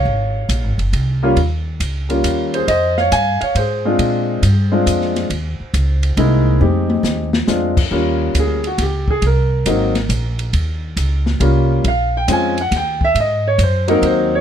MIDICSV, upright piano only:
0, 0, Header, 1, 2, 480
1, 0, Start_track
1, 0, Tempo, 436364
1, 65, Time_signature, 3, 2, 24, 8
1, 15848, End_track
2, 0, Start_track
2, 0, Title_t, "Upright piano"
2, 0, Program_c, 0, 0
2, 0, Note_on_c, 0, 73, 62
2, 0, Note_on_c, 0, 77, 78
2, 830, Note_off_c, 0, 77, 0
2, 836, Note_off_c, 0, 73, 0
2, 1348, Note_on_c, 0, 55, 77
2, 1355, Note_on_c, 0, 58, 71
2, 1356, Note_on_c, 0, 65, 85
2, 1359, Note_on_c, 0, 61, 71
2, 1490, Note_off_c, 0, 55, 0
2, 1494, Note_off_c, 0, 58, 0
2, 1494, Note_off_c, 0, 65, 0
2, 1496, Note_off_c, 0, 61, 0
2, 2297, Note_on_c, 0, 55, 61
2, 2304, Note_on_c, 0, 58, 55
2, 2306, Note_on_c, 0, 61, 58
2, 2312, Note_on_c, 0, 65, 70
2, 2797, Note_on_c, 0, 72, 78
2, 2818, Note_on_c, 0, 68, 63
2, 2910, Note_off_c, 0, 55, 0
2, 2913, Note_off_c, 0, 58, 0
2, 2914, Note_off_c, 0, 61, 0
2, 2917, Note_off_c, 0, 65, 0
2, 2948, Note_on_c, 0, 75, 96
2, 2951, Note_off_c, 0, 68, 0
2, 2956, Note_off_c, 0, 72, 0
2, 2975, Note_on_c, 0, 72, 73
2, 3248, Note_off_c, 0, 75, 0
2, 3263, Note_off_c, 0, 72, 0
2, 3275, Note_on_c, 0, 77, 94
2, 3304, Note_on_c, 0, 73, 72
2, 3434, Note_on_c, 0, 80, 101
2, 3435, Note_off_c, 0, 73, 0
2, 3435, Note_off_c, 0, 77, 0
2, 3461, Note_on_c, 0, 77, 79
2, 3731, Note_off_c, 0, 77, 0
2, 3748, Note_on_c, 0, 77, 86
2, 3764, Note_off_c, 0, 80, 0
2, 3776, Note_on_c, 0, 73, 66
2, 3911, Note_off_c, 0, 73, 0
2, 3911, Note_off_c, 0, 77, 0
2, 3921, Note_on_c, 0, 72, 73
2, 3945, Note_on_c, 0, 68, 54
2, 4236, Note_on_c, 0, 56, 64
2, 4239, Note_on_c, 0, 60, 62
2, 4244, Note_on_c, 0, 65, 74
2, 4247, Note_on_c, 0, 62, 62
2, 4840, Note_off_c, 0, 56, 0
2, 4842, Note_off_c, 0, 60, 0
2, 4844, Note_off_c, 0, 65, 0
2, 4845, Note_off_c, 0, 62, 0
2, 5188, Note_on_c, 0, 60, 60
2, 5189, Note_on_c, 0, 56, 60
2, 5195, Note_on_c, 0, 62, 60
2, 5196, Note_on_c, 0, 65, 70
2, 5796, Note_off_c, 0, 60, 0
2, 5797, Note_off_c, 0, 56, 0
2, 5800, Note_off_c, 0, 62, 0
2, 5800, Note_off_c, 0, 65, 0
2, 5804, Note_off_c, 0, 68, 0
2, 6790, Note_on_c, 0, 56, 65
2, 6790, Note_on_c, 0, 58, 58
2, 6799, Note_on_c, 0, 63, 54
2, 6801, Note_on_c, 0, 64, 69
2, 7247, Note_off_c, 0, 56, 0
2, 7252, Note_off_c, 0, 63, 0
2, 7263, Note_on_c, 0, 56, 53
2, 7268, Note_on_c, 0, 60, 48
2, 7268, Note_on_c, 0, 63, 52
2, 7270, Note_off_c, 0, 58, 0
2, 7276, Note_off_c, 0, 64, 0
2, 7276, Note_on_c, 0, 67, 60
2, 8006, Note_off_c, 0, 56, 0
2, 8008, Note_off_c, 0, 60, 0
2, 8008, Note_off_c, 0, 63, 0
2, 8013, Note_off_c, 0, 67, 0
2, 8193, Note_off_c, 0, 72, 0
2, 8219, Note_on_c, 0, 56, 59
2, 8224, Note_on_c, 0, 60, 50
2, 8229, Note_on_c, 0, 62, 51
2, 8232, Note_on_c, 0, 65, 67
2, 8516, Note_off_c, 0, 56, 0
2, 8519, Note_off_c, 0, 60, 0
2, 8521, Note_off_c, 0, 62, 0
2, 8523, Note_off_c, 0, 65, 0
2, 8702, Note_on_c, 0, 55, 62
2, 8706, Note_on_c, 0, 58, 56
2, 8710, Note_on_c, 0, 61, 59
2, 8716, Note_on_c, 0, 65, 69
2, 9234, Note_on_c, 0, 68, 74
2, 9445, Note_off_c, 0, 55, 0
2, 9448, Note_off_c, 0, 58, 0
2, 9449, Note_off_c, 0, 61, 0
2, 9452, Note_off_c, 0, 65, 0
2, 9527, Note_off_c, 0, 68, 0
2, 9537, Note_on_c, 0, 66, 76
2, 9678, Note_off_c, 0, 66, 0
2, 9700, Note_on_c, 0, 67, 62
2, 9999, Note_off_c, 0, 67, 0
2, 10015, Note_on_c, 0, 68, 86
2, 10157, Note_off_c, 0, 68, 0
2, 10192, Note_on_c, 0, 70, 76
2, 10627, Note_on_c, 0, 54, 62
2, 10628, Note_on_c, 0, 58, 58
2, 10637, Note_on_c, 0, 60, 54
2, 10641, Note_on_c, 0, 63, 68
2, 10920, Note_off_c, 0, 54, 0
2, 10920, Note_off_c, 0, 58, 0
2, 10925, Note_off_c, 0, 60, 0
2, 10927, Note_off_c, 0, 63, 0
2, 11568, Note_off_c, 0, 70, 0
2, 12539, Note_on_c, 0, 55, 67
2, 12544, Note_on_c, 0, 58, 61
2, 12546, Note_on_c, 0, 61, 61
2, 12554, Note_on_c, 0, 65, 70
2, 13025, Note_off_c, 0, 55, 0
2, 13027, Note_off_c, 0, 58, 0
2, 13029, Note_off_c, 0, 61, 0
2, 13033, Note_off_c, 0, 65, 0
2, 13067, Note_on_c, 0, 77, 86
2, 13363, Note_off_c, 0, 77, 0
2, 13388, Note_on_c, 0, 79, 88
2, 13508, Note_on_c, 0, 60, 54
2, 13512, Note_on_c, 0, 56, 56
2, 13518, Note_on_c, 0, 61, 52
2, 13522, Note_on_c, 0, 65, 60
2, 13523, Note_off_c, 0, 79, 0
2, 13557, Note_on_c, 0, 80, 90
2, 13800, Note_off_c, 0, 60, 0
2, 13802, Note_off_c, 0, 56, 0
2, 13805, Note_off_c, 0, 61, 0
2, 13807, Note_off_c, 0, 65, 0
2, 13848, Note_off_c, 0, 80, 0
2, 13871, Note_on_c, 0, 78, 88
2, 14005, Note_off_c, 0, 78, 0
2, 14040, Note_on_c, 0, 79, 91
2, 14330, Note_off_c, 0, 79, 0
2, 14349, Note_on_c, 0, 76, 93
2, 14484, Note_off_c, 0, 76, 0
2, 14522, Note_on_c, 0, 75, 82
2, 14810, Note_off_c, 0, 75, 0
2, 14823, Note_on_c, 0, 73, 90
2, 14961, Note_off_c, 0, 73, 0
2, 14993, Note_on_c, 0, 72, 74
2, 15263, Note_on_c, 0, 54, 73
2, 15270, Note_on_c, 0, 58, 71
2, 15274, Note_on_c, 0, 60, 70
2, 15278, Note_on_c, 0, 63, 85
2, 15286, Note_off_c, 0, 72, 0
2, 15295, Note_on_c, 0, 70, 83
2, 15437, Note_off_c, 0, 70, 0
2, 15465, Note_on_c, 0, 72, 73
2, 15761, Note_off_c, 0, 72, 0
2, 15787, Note_on_c, 0, 73, 89
2, 15848, Note_off_c, 0, 54, 0
2, 15848, Note_off_c, 0, 58, 0
2, 15848, Note_off_c, 0, 60, 0
2, 15848, Note_off_c, 0, 63, 0
2, 15848, Note_off_c, 0, 73, 0
2, 15848, End_track
0, 0, End_of_file